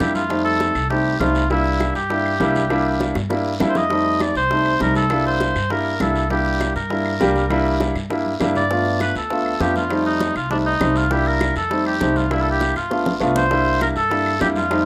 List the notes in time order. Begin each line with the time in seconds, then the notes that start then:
0.00 F2 G3 A#3 D4 E4 G4, high bongo, low bongo, short guiro
0.14 F4, high bongo, high conga, short guiro
0.29 G3 A3 C4 D#4, high bongo, long guiro, claves
0.44 A4, high bongo, high conga
0.60 high bongo, high conga, short guiro
0.75 C2, high bongo, short guiro, claves
0.90 G3 A3 C4 D#4 G4, high bongo, high conga, long guiro
1.05 high conga
1.19 C2 G3 A3 C4 D#4 F4, high bongo, low bongo, high conga, short guiro, claves
1.35 high bongo, short guiro
1.50 G3 A#3 D4 E4, high bongo, high conga, long guiro
1.66 high bongo
1.80 high bongo, high conga, short guiro, claves
1.95 G2 G4, high bongo, short guiro
2.10 G3 A#3 D4 E4, high bongo, high conga, long guiro
2.26 high conga, claves
2.40 C2 G3 A#3 D4 E4, high bongo, low bongo, short guiro
2.55 high bongo, high conga, short guiro
2.69 G3 A#3 D4 E4, high bongo, long guiro, claves
2.86 high bongo, high conga
3.00 high bongo, high conga, short guiro
3.15 G2, high bongo, short guiro, claves
3.29 G3 A#3 D4 E4, high bongo, long guiro
3.60 F2 G3 A#3 D4 E4, low bongo, high conga, short guiro, claves
3.69 C5
3.75 D#5, low bongo, high conga, short guiro
3.89 G3 A3 C4 D#4, high bongo, high conga, long guiro
4.06 high bongo, high conga
4.20 D5, high bongo, high conga, short guiro, claves
4.35 C2 C5, high bongo, high conga, short guiro
4.50 G3 A3 C4 D#4, high bongo, high conga, long guiro
4.66 claves
4.79 C2 G3 A3 C4 D#4 A#4, high bongo, low bongo, short guiro
4.95 A4, high bongo, high conga, short guiro
5.10 G3 A#3 D4 E4, high bongo, high conga, long guiro, claves
5.25 C5, high bongo
5.40 high bongo, high conga, short guiro
5.55 G2, high bongo, short guiro, claves
5.70 G3 A#3 D4 E4 A#4, high bongo, long guiro
5.86 high conga
6.00 C2 G3 A#3 D4 E4 A4, high bongo, low bongo, high conga, short guiro, claves
6.15 high bongo, high conga, short guiro
6.30 G3 A#3 D4 E4 G4, high bongo, high conga, long guiro
6.46 high bongo
6.61 high bongo, high conga, short guiro, claves
6.76 G2 A#4, high bongo, short guiro
6.90 G3 A#3 D4 E4, high bongo, high conga, long guiro
7.06 claves
7.20 C2 G3 A#3 D4 G4, high bongo, low bongo, short guiro
7.35 high bongo, high conga, short guiro
7.50 G3 A#3 D4 E4, high bongo, high conga, long guiro, claves
7.66 high bongo
7.80 high bongo, high conga, short guiro
7.95 G2, high bongo, short guiro, claves
8.10 G3 A#3 D4 E4, high bongo, high conga, long guiro
8.26 high conga
8.40 G2 G3 A#3 D4 E4, high bongo, low bongo, low conga, short guiro, claves
8.55 D5, high bongo, low conga, short guiro
8.70 A3 B3 D4 F4, high bongo, long guiro
8.85 high bongo, high conga
9.00 B4, high bongo, high conga, short guiro, claves
9.15 D2 A4, high bongo, short guiro
9.30 A3 B3 D4 F4, high bongo, high conga, long guiro
9.46 high conga, claves
9.60 F2 A3 B3 D4 F4 G4, high bongo, low bongo, short guiro
9.75 F4, high bongo, high conga, short guiro
9.89 G3 A3 C4 D#4, high bongo, long guiro, claves
10.05 D#4, high bongo, high conga
10.20 high bongo, high conga, short guiro
10.36 C2 F4, high bongo, short guiro, claves
10.50 G3 A3 C4 D4 D#4, high bongo, high conga, long guiro
10.65 D#4, high conga
10.80 C2 G3 A3 C4 D#4, high bongo, low bongo, high conga, short guiro, claves
10.96 F4, high bongo, high conga, short guiro
11.10 G3 A#3 D4 E4 G4, high bongo, long guiro
11.26 A#4, high bongo, high conga
11.41 high bongo, high conga, short guiro, claves
11.56 F2 A4, high bongo, short guiro
11.70 G3 A3 C4 D#4, high bongo, high conga, long guiro
11.86 G4, high conga, claves
12.00 C2 G3 A3 C4 D#4, high bongo, low bongo, short guiro
12.16 F4, high bongo, high conga, short guiro
12.30 G3 A#3 D4 E4, high bongo, long guiro, claves
12.42 A4, high bongo
12.46 high conga
12.51 G4
12.61 high bongo, high conga, short guiro
12.76 G1 F4, high bongo, short guiro, claves
12.90 A3 B3 D4 F4, high bongo, high conga, long guiro
13.06 low bongo
13.20 C2 A3 B3 D4 F4, high conga, short guiro, claves
13.36 C5, low bongo, short guiro
13.50 G3 A#3 D4 E4, high bongo, long guiro
13.66 high bongo, high conga
13.81 A#4, high bongo, high conga, short guiro, claves
13.96 G2 A4, high bongo, high conga, short guiro
14.10 G3 A#3 D4 E4, high bongo, long guiro
14.26 high conga, claves
14.40 F2 G3 A#3 D4 E4 G4, high bongo, low bongo, short guiro
14.56 F4, high bongo, high conga, short guiro
14.70 G3 A3 C4 D#4, high bongo, long guiro, claves